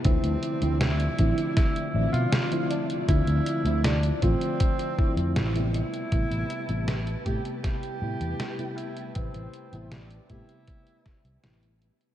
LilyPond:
<<
  \new Staff \with { instrumentName = "String machine" } { \time 4/4 \key a \minor \tempo 4 = 79 << { e''1 | r2. r8 a''8~ | a''1~ | a''1 | } \\ { <f d''>1~ | <f d''>2.~ <f d''>8 <g' b'>8~ | <g' b'>1~ | <g' b'>1 | } >> }
  \new Staff \with { instrumentName = "Tenor saxophone" } { \time 4/4 \key a \minor c'4 e'4 e'8. f'8. d'8 | e'4 d'8 c'4.~ c'16 r16 e'8~ | e'4. g'8 g'4. e'8 | c'4 d'8 e'4. r4 | }
  \new Staff \with { instrumentName = "FM electric piano" } { \time 4/4 \key a \minor <d f a c' e'>8. <d f a c' e'>16 r8 <d f a c' e'>4 <d f a c' e''>8. <d f a c' e'>8. | <d f a c' e'>8. <d f a c' e'>16 r8 <d f a c' f'>4 <d f a c' e'>8. <c g a b e'>8. | <c g a b e'>8. <c g a b e'>16 r8 <c g a b g'>4 <c g a b e'>8. <c g a b e'>8. | <c g a e' b'>8. <c g a b e'>16 r8 <c g a b g'>4 r8 <c g a b e'>4 | }
  \new Staff \with { instrumentName = "Fingered electric bass" } { \clef bass \time 4/4 \key a \minor d,16 d,16 r16 d,8 r16 a,,16 r8. a,,16 b,16 r4 | d,16 d,16 r16 d,8 r16 a,,16 r4 f,16 a,,8 r8 | a,,16 a,,16 r16 a,,8 r16 a,16 r8. a,16 e,16 r4 | a,,16 a,,16 r16 a,,8 r16 a,16 r4 c,16 a,,8 r8 | }
  \new DrumStaff \with { instrumentName = "Drums" } \drummode { \time 4/4 <hh bd>16 hh16 hh16 hh16 <hh sn>16 hh16 <hh bd>16 hh16 <hh bd sn>16 hh8 hh16 <hh sn>16 hh16 hh16 hh16 | <hh bd>16 hh16 hh16 hh16 <hh sn>16 hh16 <hh bd>16 hh16 <hh bd>16 hh16 bd16 hh16 <hh sn>16 hh16 hh16 hh16 | <hh bd>16 hh16 hh16 hh16 <hh sn>16 hh16 <hh bd>16 hh16 <hh bd sn>16 hh8 hh16 <hh sn>16 hh16 hh16 hh16 | <hh bd>16 hh16 hh16 hh16 <hh sn>16 hh16 <hh bd>16 hh16 <hh bd>16 hh16 <hh bd sn>16 hh16 <hh sn>16 hh16 hh16 hh16 | }
>>